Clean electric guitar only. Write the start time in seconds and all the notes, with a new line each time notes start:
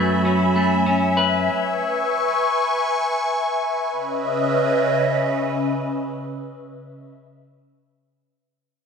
Already playing: F#2 A3 E4 B4
0.25 C#4
0.56 A3
0.86 C#4
1.17 B4